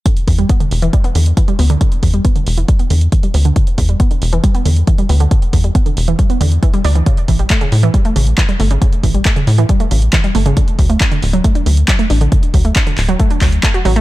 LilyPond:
<<
  \new Staff \with { instrumentName = "Synth arpeggio sound" } { \clef bass \time 4/4 \key e \dorian \tempo 4 = 137 d16 r16 e16 g16 b16 d16 r16 e16 g16 b16 d16 r16 e16 g16 b16 d16 | d16 r16 e16 g16 b16 d16 r16 e16 g16 b16 d16 r16 e16 g16 b16 d16 | d16 r16 e16 g16 b16 d16 r16 e16 g16 b16 d16 r16 e16 g16 b16 d16 | d16 r16 e16 g16 b16 d16 r16 e16 g16 b16 d16 r16 e16 g16 d'16 e16 |
cis16 r16 e16 g16 a16 cis16 r16 e16 g16 a16 cis16 r16 e16 g16 a16 cis16 | cis16 r16 e16 g16 a16 cis16 r16 e16 g16 a16 cis16 r16 e16 g16 a16 cis16 | d16 r16 fis16 a16 d'16 d16 r16 fis16 a16 d'16 d16 r16 fis16 a16 d'16 d16 | d16 r16 fis16 a16 d'16 d16 r16 fis16 a16 d'16 fis16 r16 a16 fis'16 fis16 a16 | }
  \new Staff \with { instrumentName = "Analog synth bass" } { \clef bass \time 4/4 \key e \dorian r8 e,8 r8 e,,8 r8 e,8 r8 d,8 | r8 e,8 r8 e,,8 r8 e,8 r8 d,8 | r8 e,8 r8 e,,8 r8 e,8 r8 d,8 | r8 e,8 r8 e,,8 r8 e,8 r8 d,8 |
r8 a,,8 r8 a,8 r8 a,,8 r8 g,,8 | r8 a,,8 r8 a,8 r8 a,,8 r8 g,,8 | r8 d,8 r8 d,,8 r8 d,8 r8 a,,8 | r8 d,8 r8 d,,8 r8 d,8 r8 a,,8 | }
  \new DrumStaff \with { instrumentName = "Drums" } \drummode { \time 4/4 <hh bd>16 hh16 <hho bd>16 hh16 <hh bd>16 hh16 hho16 hh16 <hh bd>16 hh16 hho16 hh16 <hh bd>16 hh16 hho16 hh16 | <hh bd>16 hh16 <hho bd>16 hh16 <hh bd>16 hh16 hho16 hh16 <hh bd>16 hh16 hho16 hh16 <hh bd>16 hh16 hho16 hh16 | <hh bd>16 hh16 <hho bd>16 hh16 <hh bd>16 hh16 hho16 hh16 <hh bd>16 hh16 hho16 hh16 <hh bd>16 hh16 hho16 hh16 | <hh bd>16 hh16 <hho bd>16 hh16 <hh bd>16 hh16 hho16 hh16 <hh bd>16 hh16 hho16 hh16 <hh bd>16 hh16 hho16 hh16 |
<hh bd>16 hh16 <hho bd>16 hh16 <hc hh bd>16 hh16 hho16 hh16 <hh bd>16 hh16 hho16 hh16 <hc hh bd>16 hh16 hho16 hh16 | <hh bd>16 hh16 <hho bd>16 hh16 <hc hh bd>16 hh16 hho16 hh16 <hh bd>16 hh16 hho16 hh16 <hc hh bd>16 hh16 hho16 hh16 | <hh bd>16 hh16 <hho bd>16 hh16 <hc hh bd>16 hh16 hho16 hh16 <hh bd>16 hh16 hho16 hh16 <hc hh bd>16 hh16 hho16 hh16 | <hh bd>16 hh16 <hho bd>16 hh16 <hc hh bd>16 hh16 <hc hho>16 hh16 <hh bd>16 hh16 <hc hho bd>16 hh16 <hc hh bd>16 hh16 hho16 hh16 | }
>>